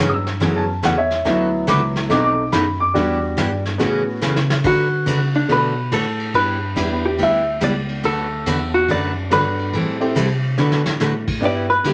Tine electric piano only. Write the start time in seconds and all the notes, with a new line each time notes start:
0.00 G2
0.41 F#2
0.83 E2
1.11 E2
1.26 D2
1.68 C#2
2.10 B1
2.53 F#2
2.95 E2
3.37 G2
3.80 A2
4.22 C#3
4.64 D3
5.06 C#3
5.34 C#3
5.49 B2
5.92 A2
6.34 G2
6.76 E2
7.18 D2
7.62 C#2
8.04 D2
8.46 E2
8.88 F#2
9.31 G2
9.73 A2
10.16 C3
10.58 D3
11.00 A2
11.42 G2
11.70 G2
11.84 D3